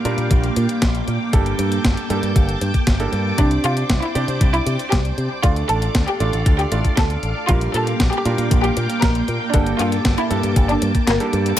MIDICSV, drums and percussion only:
0, 0, Header, 1, 2, 480
1, 0, Start_track
1, 0, Tempo, 512821
1, 1246, Time_signature, 4, 2, 24, 8
1, 10853, End_track
2, 0, Start_track
2, 0, Title_t, "Drums"
2, 48, Note_on_c, 9, 42, 63
2, 141, Note_off_c, 9, 42, 0
2, 168, Note_on_c, 9, 42, 36
2, 261, Note_off_c, 9, 42, 0
2, 287, Note_on_c, 9, 36, 124
2, 287, Note_on_c, 9, 42, 84
2, 381, Note_off_c, 9, 36, 0
2, 381, Note_off_c, 9, 42, 0
2, 408, Note_on_c, 9, 42, 37
2, 501, Note_off_c, 9, 42, 0
2, 528, Note_on_c, 9, 42, 62
2, 622, Note_off_c, 9, 42, 0
2, 647, Note_on_c, 9, 42, 38
2, 741, Note_off_c, 9, 42, 0
2, 767, Note_on_c, 9, 36, 122
2, 767, Note_on_c, 9, 38, 121
2, 767, Note_on_c, 9, 42, 85
2, 860, Note_off_c, 9, 38, 0
2, 860, Note_off_c, 9, 42, 0
2, 861, Note_off_c, 9, 36, 0
2, 886, Note_on_c, 9, 42, 37
2, 980, Note_off_c, 9, 42, 0
2, 1007, Note_on_c, 9, 42, 39
2, 1101, Note_off_c, 9, 42, 0
2, 1247, Note_on_c, 9, 36, 120
2, 1247, Note_on_c, 9, 42, 86
2, 1340, Note_off_c, 9, 42, 0
2, 1341, Note_off_c, 9, 36, 0
2, 1367, Note_on_c, 9, 42, 36
2, 1461, Note_off_c, 9, 42, 0
2, 1487, Note_on_c, 9, 42, 64
2, 1580, Note_off_c, 9, 42, 0
2, 1607, Note_on_c, 9, 42, 37
2, 1701, Note_off_c, 9, 42, 0
2, 1727, Note_on_c, 9, 36, 118
2, 1727, Note_on_c, 9, 38, 125
2, 1727, Note_on_c, 9, 42, 90
2, 1821, Note_off_c, 9, 36, 0
2, 1821, Note_off_c, 9, 38, 0
2, 1821, Note_off_c, 9, 42, 0
2, 1847, Note_on_c, 9, 42, 37
2, 1941, Note_off_c, 9, 42, 0
2, 1967, Note_on_c, 9, 42, 62
2, 2061, Note_off_c, 9, 42, 0
2, 2087, Note_on_c, 9, 42, 35
2, 2181, Note_off_c, 9, 42, 0
2, 2207, Note_on_c, 9, 36, 124
2, 2207, Note_on_c, 9, 42, 85
2, 2300, Note_off_c, 9, 36, 0
2, 2301, Note_off_c, 9, 42, 0
2, 2327, Note_on_c, 9, 42, 36
2, 2421, Note_off_c, 9, 42, 0
2, 2447, Note_on_c, 9, 42, 60
2, 2540, Note_off_c, 9, 42, 0
2, 2567, Note_on_c, 9, 36, 64
2, 2567, Note_on_c, 9, 42, 36
2, 2660, Note_off_c, 9, 36, 0
2, 2660, Note_off_c, 9, 42, 0
2, 2686, Note_on_c, 9, 38, 115
2, 2686, Note_on_c, 9, 42, 86
2, 2687, Note_on_c, 9, 36, 121
2, 2779, Note_off_c, 9, 38, 0
2, 2779, Note_off_c, 9, 42, 0
2, 2780, Note_off_c, 9, 36, 0
2, 2805, Note_on_c, 9, 42, 37
2, 2899, Note_off_c, 9, 42, 0
2, 2926, Note_on_c, 9, 42, 36
2, 3020, Note_off_c, 9, 42, 0
2, 3165, Note_on_c, 9, 42, 88
2, 3167, Note_on_c, 9, 36, 115
2, 3258, Note_off_c, 9, 42, 0
2, 3260, Note_off_c, 9, 36, 0
2, 3285, Note_on_c, 9, 42, 36
2, 3379, Note_off_c, 9, 42, 0
2, 3406, Note_on_c, 9, 42, 61
2, 3500, Note_off_c, 9, 42, 0
2, 3527, Note_on_c, 9, 42, 37
2, 3620, Note_off_c, 9, 42, 0
2, 3646, Note_on_c, 9, 38, 120
2, 3646, Note_on_c, 9, 42, 90
2, 3647, Note_on_c, 9, 36, 110
2, 3740, Note_off_c, 9, 38, 0
2, 3740, Note_off_c, 9, 42, 0
2, 3741, Note_off_c, 9, 36, 0
2, 3767, Note_on_c, 9, 42, 38
2, 3861, Note_off_c, 9, 42, 0
2, 3888, Note_on_c, 9, 42, 63
2, 3981, Note_off_c, 9, 42, 0
2, 4008, Note_on_c, 9, 42, 38
2, 4101, Note_off_c, 9, 42, 0
2, 4127, Note_on_c, 9, 36, 119
2, 4127, Note_on_c, 9, 42, 84
2, 4221, Note_off_c, 9, 36, 0
2, 4221, Note_off_c, 9, 42, 0
2, 4247, Note_on_c, 9, 42, 38
2, 4341, Note_off_c, 9, 42, 0
2, 4367, Note_on_c, 9, 42, 62
2, 4460, Note_off_c, 9, 42, 0
2, 4487, Note_on_c, 9, 42, 37
2, 4581, Note_off_c, 9, 42, 0
2, 4607, Note_on_c, 9, 36, 115
2, 4607, Note_on_c, 9, 38, 114
2, 4607, Note_on_c, 9, 42, 86
2, 4700, Note_off_c, 9, 38, 0
2, 4700, Note_off_c, 9, 42, 0
2, 4701, Note_off_c, 9, 36, 0
2, 4727, Note_on_c, 9, 42, 36
2, 4820, Note_off_c, 9, 42, 0
2, 4847, Note_on_c, 9, 42, 37
2, 4941, Note_off_c, 9, 42, 0
2, 5087, Note_on_c, 9, 42, 88
2, 5088, Note_on_c, 9, 36, 114
2, 5180, Note_off_c, 9, 42, 0
2, 5181, Note_off_c, 9, 36, 0
2, 5208, Note_on_c, 9, 42, 37
2, 5301, Note_off_c, 9, 42, 0
2, 5327, Note_on_c, 9, 42, 65
2, 5420, Note_off_c, 9, 42, 0
2, 5448, Note_on_c, 9, 42, 37
2, 5541, Note_off_c, 9, 42, 0
2, 5567, Note_on_c, 9, 38, 114
2, 5567, Note_on_c, 9, 42, 91
2, 5568, Note_on_c, 9, 36, 110
2, 5660, Note_off_c, 9, 38, 0
2, 5660, Note_off_c, 9, 42, 0
2, 5661, Note_off_c, 9, 36, 0
2, 5687, Note_on_c, 9, 42, 38
2, 5781, Note_off_c, 9, 42, 0
2, 5806, Note_on_c, 9, 42, 63
2, 5900, Note_off_c, 9, 42, 0
2, 5927, Note_on_c, 9, 42, 38
2, 6021, Note_off_c, 9, 42, 0
2, 6047, Note_on_c, 9, 36, 119
2, 6047, Note_on_c, 9, 42, 86
2, 6141, Note_off_c, 9, 36, 0
2, 6141, Note_off_c, 9, 42, 0
2, 6168, Note_on_c, 9, 42, 39
2, 6262, Note_off_c, 9, 42, 0
2, 6287, Note_on_c, 9, 42, 65
2, 6381, Note_off_c, 9, 42, 0
2, 6407, Note_on_c, 9, 36, 59
2, 6408, Note_on_c, 9, 42, 39
2, 6501, Note_off_c, 9, 36, 0
2, 6502, Note_off_c, 9, 42, 0
2, 6527, Note_on_c, 9, 36, 114
2, 6527, Note_on_c, 9, 38, 115
2, 6527, Note_on_c, 9, 42, 87
2, 6620, Note_off_c, 9, 38, 0
2, 6620, Note_off_c, 9, 42, 0
2, 6621, Note_off_c, 9, 36, 0
2, 6646, Note_on_c, 9, 42, 38
2, 6740, Note_off_c, 9, 42, 0
2, 6767, Note_on_c, 9, 42, 38
2, 6860, Note_off_c, 9, 42, 0
2, 7007, Note_on_c, 9, 36, 108
2, 7007, Note_on_c, 9, 42, 93
2, 7100, Note_off_c, 9, 42, 0
2, 7101, Note_off_c, 9, 36, 0
2, 7126, Note_on_c, 9, 42, 40
2, 7220, Note_off_c, 9, 42, 0
2, 7246, Note_on_c, 9, 42, 65
2, 7340, Note_off_c, 9, 42, 0
2, 7367, Note_on_c, 9, 42, 40
2, 7461, Note_off_c, 9, 42, 0
2, 7487, Note_on_c, 9, 36, 106
2, 7487, Note_on_c, 9, 38, 114
2, 7487, Note_on_c, 9, 42, 98
2, 7581, Note_off_c, 9, 36, 0
2, 7581, Note_off_c, 9, 38, 0
2, 7581, Note_off_c, 9, 42, 0
2, 7607, Note_on_c, 9, 42, 41
2, 7700, Note_off_c, 9, 42, 0
2, 7726, Note_on_c, 9, 42, 66
2, 7820, Note_off_c, 9, 42, 0
2, 7846, Note_on_c, 9, 42, 41
2, 7940, Note_off_c, 9, 42, 0
2, 7967, Note_on_c, 9, 36, 114
2, 7967, Note_on_c, 9, 42, 89
2, 8060, Note_off_c, 9, 42, 0
2, 8061, Note_off_c, 9, 36, 0
2, 8086, Note_on_c, 9, 42, 40
2, 8180, Note_off_c, 9, 42, 0
2, 8206, Note_on_c, 9, 42, 67
2, 8300, Note_off_c, 9, 42, 0
2, 8326, Note_on_c, 9, 42, 40
2, 8420, Note_off_c, 9, 42, 0
2, 8445, Note_on_c, 9, 38, 110
2, 8445, Note_on_c, 9, 42, 92
2, 8447, Note_on_c, 9, 36, 113
2, 8539, Note_off_c, 9, 38, 0
2, 8539, Note_off_c, 9, 42, 0
2, 8541, Note_off_c, 9, 36, 0
2, 8566, Note_on_c, 9, 42, 40
2, 8659, Note_off_c, 9, 42, 0
2, 8686, Note_on_c, 9, 42, 41
2, 8780, Note_off_c, 9, 42, 0
2, 8926, Note_on_c, 9, 42, 93
2, 8927, Note_on_c, 9, 36, 112
2, 9019, Note_off_c, 9, 42, 0
2, 9020, Note_off_c, 9, 36, 0
2, 9046, Note_on_c, 9, 42, 41
2, 9139, Note_off_c, 9, 42, 0
2, 9167, Note_on_c, 9, 42, 69
2, 9260, Note_off_c, 9, 42, 0
2, 9287, Note_on_c, 9, 42, 41
2, 9381, Note_off_c, 9, 42, 0
2, 9406, Note_on_c, 9, 38, 117
2, 9406, Note_on_c, 9, 42, 98
2, 9407, Note_on_c, 9, 36, 109
2, 9500, Note_off_c, 9, 36, 0
2, 9500, Note_off_c, 9, 38, 0
2, 9500, Note_off_c, 9, 42, 0
2, 9526, Note_on_c, 9, 42, 42
2, 9620, Note_off_c, 9, 42, 0
2, 9647, Note_on_c, 9, 42, 66
2, 9740, Note_off_c, 9, 42, 0
2, 9766, Note_on_c, 9, 42, 41
2, 9860, Note_off_c, 9, 42, 0
2, 9886, Note_on_c, 9, 36, 111
2, 9886, Note_on_c, 9, 42, 91
2, 9980, Note_off_c, 9, 36, 0
2, 9980, Note_off_c, 9, 42, 0
2, 10007, Note_on_c, 9, 42, 39
2, 10101, Note_off_c, 9, 42, 0
2, 10126, Note_on_c, 9, 42, 70
2, 10220, Note_off_c, 9, 42, 0
2, 10246, Note_on_c, 9, 36, 59
2, 10246, Note_on_c, 9, 42, 41
2, 10340, Note_off_c, 9, 36, 0
2, 10340, Note_off_c, 9, 42, 0
2, 10365, Note_on_c, 9, 38, 113
2, 10365, Note_on_c, 9, 42, 95
2, 10459, Note_off_c, 9, 38, 0
2, 10459, Note_off_c, 9, 42, 0
2, 10486, Note_on_c, 9, 42, 43
2, 10580, Note_off_c, 9, 42, 0
2, 10606, Note_on_c, 9, 42, 41
2, 10699, Note_off_c, 9, 42, 0
2, 10726, Note_on_c, 9, 42, 37
2, 10820, Note_off_c, 9, 42, 0
2, 10853, End_track
0, 0, End_of_file